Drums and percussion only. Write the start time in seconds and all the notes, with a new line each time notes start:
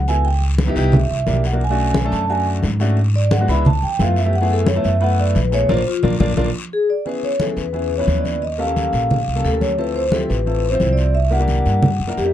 0.08 high conga, short guiro
0.25 high conga, long guiro
0.41 high conga
0.58 high conga, short guiro
0.76 high conga, short guiro
0.92 high conga, low conga, long guiro
1.10 high conga
1.26 high conga, short guiro
1.44 short guiro
1.60 high conga, long guiro
1.78 high conga
1.94 high conga, short guiro
2.11 high conga, short guiro
2.28 high conga, long guiro
2.45 high conga
2.62 high conga, short guiro
2.80 high conga, short guiro
2.97 high conga, long guiro
3.14 high conga
3.31 high conga, short guiro
3.48 high conga, short guiro
3.65 high conga, low conga, long guiro
3.83 high conga
3.99 high conga, short guiro
4.16 short guiro
4.33 high conga, long guiro
4.50 high conga
4.67 high conga, short guiro
4.84 high conga, short guiro
5.01 high conga, long guiro
5.19 high conga
5.35 high conga, short guiro
5.52 high conga, short guiro
5.69 high conga, long guiro
6.03 high conga, long guiro
6.20 high conga, long guiro
6.37 high conga, long guiro
7.06 high conga, long guiro
7.23 high conga
7.40 high conga, short guiro
7.56 high conga, short guiro
7.74 high conga, long guiro
7.91 high conga
8.08 high conga, short guiro
8.25 high conga, short guiro
8.42 high conga, long guiro
8.59 high conga
8.76 high conga, short guiro
8.93 high conga, short guiro
9.11 high conga, low conga, long guiro
9.28 high conga
9.44 high conga, short guiro
9.61 high conga, short guiro
9.79 high conga, long guiro
9.95 high conga
10.12 high conga, short guiro
10.29 high conga, short guiro
10.46 high conga, long guiro
10.63 high conga
10.80 high conga, short guiro
10.97 short guiro
11.14 high conga, long guiro
11.32 high conga
11.48 high conga, short guiro
11.65 high conga, short guiro
11.83 high conga, low conga, long guiro
12.00 high conga
12.17 high conga, short guiro